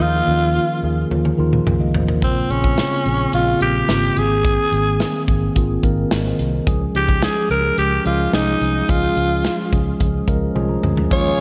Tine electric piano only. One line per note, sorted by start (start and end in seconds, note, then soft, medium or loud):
0.00 0.27 D#3 medium
0.00 0.28 F3 medium
0.00 0.28 A#3 medium
0.00 0.28 C#4 medium
0.00 0.56 F4 loud
0.00 2.25 G4 medium
0.00 0.84 G#4 medium
0.27 0.46 D#3 medium
0.27 0.46 F3 medium
0.27 0.46 A#3 medium
0.27 0.47 C#4 medium
0.55 0.74 D#3 medium
0.55 0.74 F3 medium
0.55 0.74 A#3 medium
0.55 0.74 F4 medium
0.83 1.02 D#3 medium
0.83 1.02 F3 medium
0.83 1.02 A#3 medium
0.83 1.02 G#4 medium
1.11 1.29 D#3 medium
1.11 1.30 F3 medium
1.11 1.30 A#3 medium
1.11 1.30 F4 medium
1.38 1.57 D#3 loud
1.38 1.57 F3 medium
1.38 1.58 A#3 loud
1.38 1.58 F4 loud
1.81 1.94 D#5 medium
1.95 2.08 C5 medium
2.08 2.35 A#4 medium
2.22 2.40 C#3 medium
2.22 2.41 A#3 medium
2.22 2.41 C4 medium
2.22 2.41 F4 loud
2.49 2.68 C#3 medium
2.49 2.68 A#3 medium
2.49 2.69 C4 medium
2.49 2.69 G#4 medium
2.77 2.96 C#3 medium
2.77 2.96 A#3 medium
2.77 2.96 C4 medium
2.77 2.97 F4 medium
3.05 3.24 C#3 medium
3.05 3.24 A#3 medium
3.05 3.24 C4 medium
3.05 3.25 G#4 medium
3.33 3.52 C#3 medium
3.33 3.52 A#3 medium
3.33 3.52 C4 medium
3.33 3.52 F4 medium
3.60 3.79 C#3 medium
3.60 3.80 A#3 medium
3.60 3.80 C4 medium
3.60 3.80 F4 loud
3.88 4.07 C#3 medium
3.88 4.07 A#3 medium
3.88 4.08 C4 medium
3.88 4.08 F4 loud
4.16 4.61 D#3 medium
4.16 4.61 A#3 medium
4.16 4.61 C4 medium
4.16 4.62 G#4 medium
4.72 4.91 D#3 medium
4.72 4.91 A#3 medium
4.72 4.91 C4 medium
4.72 4.91 G#4 medium
5.00 5.18 D#3 medium
5.00 5.19 A#3 medium
5.00 5.19 C4 medium
5.00 5.19 G#4 medium
5.27 5.46 D#3 medium
5.27 5.46 A#3 medium
5.27 5.46 C4 medium
5.27 5.47 G#4 medium
5.55 5.74 D#3 medium
5.55 5.74 A#3 medium
5.55 5.74 C4 medium
5.55 5.74 F4 medium
5.83 6.02 D#3 loud
5.83 6.02 A#3 loud
5.83 6.02 C4 loud
5.83 6.02 A#4 loud
6.25 6.51 C5 medium
6.53 6.79 A#4 medium
6.66 6.85 F3 loud
6.66 6.85 G#3 medium
6.66 6.85 C#4 loud
6.66 6.86 G#4 loud
6.94 7.13 F3 medium
6.94 7.13 G#3 medium
6.94 7.13 C#4 medium
6.94 7.13 D#4 medium
7.21 7.40 F3 medium
7.21 7.41 G#3 medium
7.21 7.41 C#4 medium
7.21 7.41 G#4 medium
7.50 7.68 F3 medium
7.50 7.69 G#3 medium
7.50 7.69 C#4 medium
7.50 7.69 G#4 medium
7.77 7.96 F3 medium
7.77 7.96 G#3 medium
7.77 7.97 C#4 medium
7.77 7.97 G#4 medium
8.05 8.24 F3 medium
8.05 8.24 G#3 medium
8.05 8.24 C#4 medium
8.05 8.24 G#4 medium
8.33 8.52 F3 medium
8.33 8.52 G#3 medium
8.33 8.52 C#4 medium
8.33 8.52 G#4 loud
8.61 8.79 F3 medium
8.61 8.80 G#3 medium
8.61 8.80 C#4 medium
8.61 8.80 G#4 medium
8.88 9.07 F3 medium
8.88 9.07 G#3 medium
8.88 9.08 C#4 medium
8.88 9.08 G#4 medium
9.16 9.35 F3 medium
9.16 9.35 G#3 medium
9.16 9.35 C#4 medium
9.16 9.36 F4 medium
9.44 9.63 F3 medium
9.44 9.63 G#3 medium
9.44 9.63 G#4 medium
9.72 9.91 F3 medium
9.72 9.91 G#3 medium
9.72 9.91 C#4 medium
9.72 9.91 G#4 medium
9.99 10.18 F3 medium
9.99 10.18 G#3 medium
9.99 10.19 C#4 medium
9.99 10.19 G#4 medium
10.27 10.46 F3 loud
10.27 10.46 G#3 medium
10.27 10.46 C#4 loud
10.27 10.47 A#4 loud
10.27 10.54 F5 medium
10.55 10.74 F3 loud
10.55 10.74 G#3 loud
10.55 10.74 C#4 loud
10.55 10.74 G#4 loud
10.55 10.69 G#5 medium
10.69 11.08 A#5 medium
10.83 11.02 F3 medium
10.83 11.02 G#3 medium
10.83 11.02 C#4 medium
10.83 11.02 G#4 medium
11.11 11.29 F3 medium
11.11 11.30 G#3 medium
11.11 11.30 C#4 medium
11.11 11.30 G#4 loud